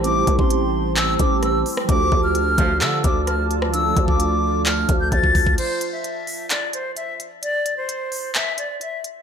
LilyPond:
<<
  \new Staff \with { instrumentName = "Flute" } { \time 4/4 \key d \minor \tempo 4 = 130 d'''8. c'''4~ c'''16 e'''8 d'''8 e'''8 r8 | d'''8. f'''4~ f'''16 e'''8 d'''8 f'''8 r8 | e'''8. d'''4~ d'''16 f'''8. g'''16 a'''4 | c''8. e''4~ e''16 d''8 c''8 e''8 r8 |
d''8. c''4~ c''16 e''8 d''8 e''8 r8 | }
  \new Staff \with { instrumentName = "Ambient pad" } { \time 4/4 \key d \minor <g' c'' a''>1 | <f' d'' a''>1~ | <f' d'' a''>1 | r1 |
r1 | }
  \new Staff \with { instrumentName = "Tine electric piano" } { \time 4/4 \key d \minor <g a c' e' g'>1 | <f a d' f' a'>1 | <f a d' f' a'>1 | r1 |
r1 | }
  \new Staff \with { instrumentName = "Brass ensemble" } { \clef bass \time 4/4 \key d \minor r1 | r4. <d, a, f>8 r2 | r1 | r1 |
r1 | }
  \new Staff \with { instrumentName = "808-style bass" } { \clef bass \time 4/4 \key d \minor a,,8 c,16 a,,4.~ a,,16 a,,4 r8 | d,8 d,4 d,8 d8 d,4.~ | d,8 d,2 d,8 d,4 | r1 |
r1 | }
  \new DrumStaff \with { instrumentName = "Drums" } \drummode { \time 4/4 hh8 <hh bd>16 bd16 hh4 <hc hh>8 <hh bd>8 <hh ss>8 hho16 ss16 | <hh bd>8 bd8 hh8 <hh bd>8 <hc hh>8 <hh bd>8 <hh ss>8 hh16 ss16 | hh8 <hh bd>16 bd16 hh4 <hc hh>8 <hh bd>8 <hh bd>16 bd16 <hho bd>16 bd16 | <cymc hh>8 hh8 hh8 hho8 <hc hh>8 hh8 hh8 hh8 |
hh8 hh8 hh8 hho8 <hc hh>8 hh8 hh8 hh8 | }
>>